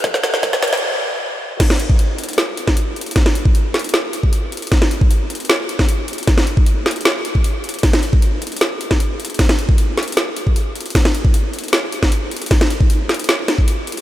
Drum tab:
CC |--------------------------------|x-------------------------------|--------------------------------|--------------------------------|
HH |x---x---x---xxxx----------------|x---x---x---xxxxx---x---x---xxxx|x---x---x---xxxxx---x---x---xxxx|x---x---x---xxxxx---x---x---xxxx|
SD |o-o-o-o-o-o-o-o-----------------|o-o-------------o-----o---------|o-o---------o---o---------------|o-o-------------o-----o---------|
BD |o-------o-----------------------|o-----o---------------o---------|o-----o---------------o---------|o-----o---------------o---------|

CC |--------------------------------|x-------------------------------|x-------------------------------|x-------------------------------|
HH |x---x---x---xxxxx---x---x---xxxx|x---x---x---xxxxx---x---x---xxxx|x---x---x---xxxxx---x---x---xxxx|x---x---x---xxxxx---x---x---xxxx|
SD |o-o---------o---o---------------|o-o-------------o-----o---------|o-o---------o---o---------------|o-o-------------o-----o---------|
BD |o-----o---------------o---------|o-----o---------------o---------|o-----o---------------o---------|o-----o---------------o---------|

CC |x-------------------------------|
HH |x---x---x---xxxxx---x---x---xxx-|
SD |o-o---------o---o---o-----------|
BD |o-----o---------------o---------|